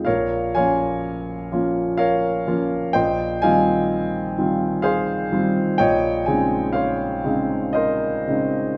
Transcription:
<<
  \new Staff \with { instrumentName = "Grand piano" } { \time 3/4 \key bes \dorian \tempo 4 = 62 <bes' des'' f''>8 <des'' f'' aes''>4. <bes' des'' f''>4 | <c'' ees'' g''>8 <ees'' f'' aes''>4. <aes' c'' f''>4 | <des'' ees'' g''>8 aes''8 <c'' des'' f''>4 <bes' c'' ees''>4 | }
  \new Staff \with { instrumentName = "Grand piano" } { \time 3/4 \key bes \dorian bes,,8 <f bes des' f'>4 <f bes des' f'>4 <f bes des' f'>8 | bes,,8 <ees g c' f'>4 <ees g c' f'>4 <ees g c' f'>8 | bes,,8 <des aes c' ees'>4 <des aes c' ees'>4 <des aes c' ees'>8 | }
>>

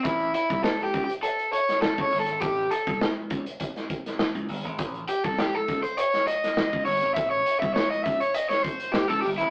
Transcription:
<<
  \new Staff \with { instrumentName = "Overdriven electric guitar" } { \time 4/4 \key a \mixolydian \tempo 4 = 101 e'8 e'8 \tuplet 3/2 { a'8 g'8 g'8 } a'8 cis''8 \tuplet 3/2 { a'8 cis''8 a'8 } | g'8 a'8 r2. | r8 g'16 a'16 g'16 a'8 c''16 cis''8 dis''4 cis''8 | e''16 cis''8 e''16 cis''16 dis''16 e''16 cis''16 dis''16 cis''16 c''8 g'16 a'16 g'16 e'16 | }
  \new Staff \with { instrumentName = "Slap bass" } { \clef bass \time 4/4 \key a \mixolydian a,,8 r16 c,16 r8 cis,16 r4. cis,16 g,,16 gis,,16 | a,,8 r16 c,16 r8 cis,16 r4. cis,16 g,,16 gis,,16 | a,,8 r16 c,16 r8 cis,16 r4. cis,16 g,,16 gis,,16 | a,,8 r16 c,16 r8 cis,16 r4. cis,16 g,,16 gis,,16 | }
  \new DrumStaff \with { instrumentName = "Drums" } \drummode { \time 4/4 <hh bd>16 hh16 hh16 <hh bd>16 sn16 hh16 <hh bd>16 hh16 hh16 hh16 hh16 <hh sn>16 sn16 <hh bd>16 hho16 hh16 | <hh bd>16 hh16 hh16 <hh bd>16 sn8 <hh bd>16 hh16 <hh bd>16 <hh sn>16 <hh bd>16 <hh sn>16 sn16 hh16 hho16 hh16 | <hh bd>16 hh16 hh16 <hh bd>16 sn8 <hh bd>16 hh16 hh16 <hh sn>16 hh16 <hh sn>16 sn16 bd16 hho16 hh16 | <hh bd>16 hh16 hh16 <hh bd>16 sn16 hh16 <hh bd>16 hh16 hh16 <hh sn>16 <hh bd>16 hh16 sn16 hh16 hho16 hh16 | }
>>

